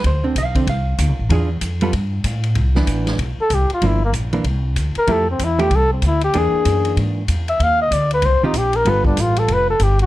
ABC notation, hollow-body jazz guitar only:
X:1
M:4/4
L:1/8
Q:"Swing" 1/4=191
K:Ddor
V:1 name="Hollow-body jazz guitar"
c [D,C] f [D,C] f4 | [E,DF^G] z2 [=G,B,FA] z4 | [K:C] z [E,B,D]3 z4 | [F,_B,D] z2 [E,B,D] z4 |
[F,A,EG] z2 [F,A,EG] z4 | [E,^A,D^G]4- [E,A,DG] z3 | z4 z [_E,CFG] z2 | [G,B,FA]4- [G,B,FA] z3 |]